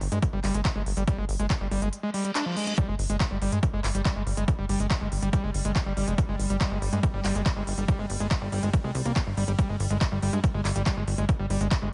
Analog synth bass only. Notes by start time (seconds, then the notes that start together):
0.01 G1
0.12 G2
0.33 G1
0.44 G1
0.54 G1
0.76 G1
0.86 G1
0.97 G1
1.18 G1
1.29 G1
1.39 G1
1.61 G1
1.71 G1
1.82 G1
2.88 G1
2.99 G1
3.10 G1
3.31 G1
3.42 G1
3.52 G2
3.74 G1
3.84 G1
3.95 G1
4.16 G1
4.27 G1
4.37 G1
4.59 G1
4.69 G1
4.80 G1
5.01 G1
5.12 G1
5.22 G1
5.44 G1
5.54 G1
5.65 G1
5.86 G1
5.97 G1
6.08 F1
6.29 G1
6.39 G1
6.50 G1
6.71 G1
6.82 G1
6.93 G2
7.14 G1
7.25 G1
7.35 G1
7.56 G1
7.67 G1
7.78 G1
7.99 G1
8.10 G1
8.20 G1
8.42 G1
8.52 G1
8.63 G1
8.84 C2
8.95 C2
9.05 C2
9.27 G1
9.37 G1
9.48 G1
9.69 G1
9.80 G1
9.91 G1
10.12 G1
10.22 G1
10.33 G2
10.54 G1
10.65 G1
10.76 G1
10.97 G1
11.08 G1
11.18 G1
11.39 G1
11.50 G1
11.61 G1
11.82 G1